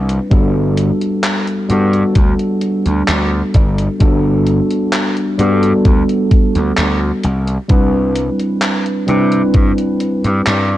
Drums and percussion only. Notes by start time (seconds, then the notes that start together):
0.09 closed hi-hat
0.31 kick, closed hi-hat
0.77 closed hi-hat
1.01 closed hi-hat
1.24 clap, closed hi-hat
1.47 closed hi-hat
1.70 closed hi-hat
1.94 closed hi-hat
2.16 kick, closed hi-hat
2.40 closed hi-hat
2.62 closed hi-hat
2.86 closed hi-hat
3.08 clap, closed hi-hat
3.54 kick, closed hi-hat
3.78 closed hi-hat
4.00 kick, closed hi-hat
4.47 closed hi-hat
4.71 closed hi-hat
4.93 clap, closed hi-hat
5.17 closed hi-hat
5.39 closed hi-hat
5.63 closed hi-hat
5.85 kick, closed hi-hat
6.09 closed hi-hat
6.31 kick, closed hi-hat
6.55 closed hi-hat
6.77 clap, closed hi-hat
7.23 closed hi-hat
7.47 closed hi-hat
7.69 kick, closed hi-hat
8.16 closed hi-hat
8.40 closed hi-hat
8.62 clap, closed hi-hat
8.86 closed hi-hat
9.08 closed hi-hat
9.32 closed hi-hat
9.54 kick, closed hi-hat
9.78 closed hi-hat
10.00 closed hi-hat
10.24 closed hi-hat
10.47 clap, closed hi-hat